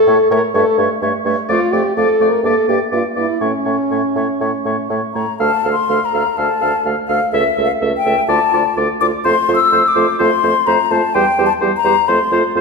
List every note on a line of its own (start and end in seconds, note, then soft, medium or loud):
0.00 0.30 A4 loud
0.07 0.18 A2 medium
0.07 0.19 A3 medium
0.07 0.18 C#5 medium
0.07 0.14 E5 medium
0.31 0.41 A2 medium
0.31 0.42 A3 medium
0.31 0.42 A#4 medium
0.31 0.42 C#5 medium
0.31 0.38 E5 medium
0.54 0.65 G2 medium
0.54 0.65 A3 medium
0.54 0.78 A4 medium
0.54 0.65 C#5 medium
0.54 0.62 E5 medium
0.78 0.89 G2 medium
0.78 0.89 A3 medium
0.78 0.89 C#5 medium
0.78 0.85 E5 medium
1.02 1.12 G2 medium
1.02 1.13 A3 medium
1.02 1.13 C#5 medium
1.02 1.08 E5 medium
1.25 1.36 G2 medium
1.25 1.36 A3 medium
1.25 1.36 C#5 medium
1.25 1.33 E5 medium
1.49 1.60 F2 medium
1.49 1.60 A3 medium
1.49 1.75 F4 medium
1.49 1.60 D5 medium
1.49 1.56 F5 medium
1.72 1.83 F2 medium
1.72 1.84 A3 medium
1.72 1.96 G4 medium
1.72 1.83 D5 medium
1.72 1.80 F5 medium
1.96 2.07 F2 medium
1.96 2.07 A3 soft
1.96 2.31 A4 medium
1.96 2.08 D5 medium
1.96 2.03 F5 medium
2.20 2.31 F2 medium
2.20 2.31 A3 medium
2.20 2.32 D5 soft
2.20 2.27 F5 medium
2.29 2.44 A#4 medium
2.44 2.54 G2 medium
2.44 2.55 A#3 medium
2.44 2.68 A4 medium
2.44 2.56 D5 medium
2.44 2.51 E5 medium
2.68 2.79 G2 medium
2.68 2.79 A#3 medium
2.68 2.80 G4 medium
2.68 2.79 D5 medium
2.68 2.75 E5 medium
2.92 3.03 G2 medium
2.92 3.03 A#3 soft
2.92 3.04 F4 medium
2.92 3.03 D5 medium
2.92 2.99 E5 soft
3.16 3.28 G2 soft
3.16 3.27 A#3 soft
3.16 3.41 E4 medium
3.16 3.27 D5 soft
3.16 3.22 E5 soft
3.41 3.52 A2 medium
3.41 3.52 A3 soft
3.41 4.87 C#4 medium
3.41 3.52 C#5 medium
3.41 3.47 E5 soft
3.65 3.77 A2 soft
3.65 3.77 A3 soft
3.65 3.76 C#5 soft
3.65 3.71 E5 soft
3.91 4.02 A2 medium
3.91 4.03 A3 soft
3.91 4.02 C#5 soft
3.91 3.97 E5 soft
4.15 4.27 A2 soft
4.15 4.27 A3 soft
4.15 4.27 C#5 soft
4.15 4.22 E5 soft
4.40 4.51 A2 medium
4.40 4.52 A3 soft
4.40 4.52 C#5 soft
4.40 4.47 E5 soft
4.65 4.76 A2 soft
4.65 4.77 A3 soft
4.65 4.77 C#5 soft
4.65 4.71 E5 soft
4.89 5.01 A2 medium
4.89 5.02 A3 soft
4.89 5.02 C#5 soft
4.89 4.95 E5 soft
5.14 5.26 A2 soft
5.14 5.26 A3 soft
5.14 5.26 C#5 soft
5.14 5.37 A#5 medium
5.39 5.51 D2 medium
5.39 5.51 A3 medium
5.39 5.51 A4 medium
5.39 5.51 F5 medium
5.39 5.72 A5 loud
5.64 5.76 D2 medium
5.64 5.76 A3 medium
5.64 5.75 A4 medium
5.64 5.76 F5 medium
5.72 6.07 C6 medium
5.89 6.00 D2 medium
5.89 6.00 A3 medium
5.89 6.00 A4 medium
5.89 6.00 F5 medium
6.05 6.39 A#5 medium
6.13 6.24 D2 medium
6.13 6.25 A3 medium
6.13 6.24 A4 medium
6.13 6.25 F5 medium
6.37 6.49 D2 medium
6.37 6.49 A3 medium
6.37 6.48 A4 medium
6.37 6.48 F5 medium
6.37 6.83 A5 loud
6.61 6.72 D2 medium
6.61 6.72 A3 medium
6.61 6.72 A4 medium
6.61 6.72 F5 medium
6.85 6.96 D2 medium
6.85 6.96 A3 medium
6.85 6.96 A4 medium
6.85 6.96 F5 medium
7.08 7.20 D2 medium
7.08 7.20 A3 medium
7.08 7.20 A4 medium
7.08 7.32 F5 medium
7.08 7.20 F5 medium
7.32 7.44 C#2 medium
7.32 7.44 A3 medium
7.32 7.44 A4 medium
7.32 7.64 E5 medium
7.32 7.44 E5 medium
7.57 7.68 C#2 medium
7.57 7.68 A3 medium
7.57 7.68 A4 medium
7.57 7.68 E5 medium
7.65 7.72 F5 medium
7.81 7.92 C#2 medium
7.81 7.92 A3 medium
7.81 7.92 A4 medium
7.81 7.92 E5 medium
7.97 8.27 G5 loud
8.05 8.16 C#2 medium
8.05 8.17 A3 medium
8.05 8.16 A4 medium
8.05 8.16 E5 medium
8.28 8.39 D2 medium
8.28 8.40 A3 medium
8.28 8.40 F4 medium
8.28 8.40 D5 medium
8.28 8.76 A5 loud
8.53 8.64 D2 medium
8.53 8.65 A3 medium
8.53 8.64 F4 medium
8.53 8.64 D5 medium
8.76 8.88 D2 medium
8.76 8.88 A3 medium
8.76 8.87 F4 medium
8.76 8.88 D5 medium
9.01 9.12 D2 medium
9.01 9.13 A3 medium
9.01 9.12 F4 medium
9.01 9.12 D5 medium
9.01 9.07 D6 loud
9.25 9.36 F2 medium
9.25 9.36 A3 medium
9.25 9.35 F4 medium
9.25 9.35 C5 medium
9.25 9.55 C6 loud
9.48 9.59 F2 medium
9.48 9.60 A3 medium
9.48 9.59 F4 medium
9.48 9.59 C5 medium
9.55 9.89 E6 loud
9.72 9.83 F2 medium
9.72 9.83 A3 medium
9.72 9.83 F4 medium
9.72 9.83 C5 medium
9.88 10.19 D6 medium
9.95 10.07 F2 medium
9.95 10.07 A3 medium
9.95 10.07 F4 medium
9.95 10.06 C5 medium
10.19 10.31 F2 medium
10.19 10.31 A3 medium
10.19 10.30 F4 medium
10.19 10.30 C5 medium
10.19 10.68 C6 loud
10.43 10.54 F2 medium
10.43 10.54 A3 medium
10.43 10.54 F4 medium
10.43 10.54 C5 medium
10.67 10.78 F2 medium
10.67 10.78 A3 medium
10.67 10.78 F4 medium
10.67 10.78 C5 medium
10.67 10.93 A#5 loud
10.91 11.01 F2 medium
10.91 11.02 A3 medium
10.91 11.02 F4 medium
10.91 11.01 C5 medium
10.91 11.16 A5 loud
11.14 11.25 E2 medium
11.14 11.26 G3 medium
11.14 11.26 G4 medium
11.14 11.25 C5 medium
11.14 11.45 G5 loud
11.38 11.49 E2 medium
11.38 11.49 G3 medium
11.38 11.49 G4 medium
11.38 11.49 C5 medium
11.46 11.53 A5 loud
11.61 11.72 E2 medium
11.61 11.73 G3 medium
11.61 11.72 G4 medium
11.61 11.72 C5 medium
11.77 12.10 A#5 loud
11.84 11.95 E2 medium
11.84 11.96 G3 medium
11.84 11.96 G4 medium
11.84 11.96 C5 medium
12.08 12.19 F2 medium
12.08 12.20 A3 medium
12.08 12.19 F4 medium
12.08 12.19 C5 medium
12.08 12.55 C6 loud
12.32 12.42 F2 medium
12.32 12.43 A3 medium
12.32 12.43 F4 medium
12.32 12.43 C5 medium
12.55 12.61 F2 medium
12.55 12.61 A3 medium
12.55 12.61 F4 medium
12.55 12.61 C5 medium